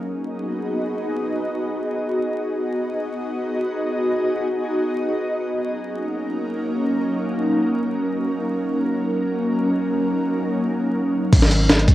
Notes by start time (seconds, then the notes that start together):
Already playing: B3 D#4 F#4 G#4 D#5
2.49 B3 D#4 F#4 G#4 D#5
5.43 F#3 A#3 C#4 D#4 A#4
8.38 F#3 A#3 C#4 D#4 A#4
11.33 G#1, kick, closed hi-hat, crash
11.42 snare
11.51 closed hi-hat
11.69 snare, closed hi-hat
11.79 closed hi-hat
11.88 C#2, kick, closed hi-hat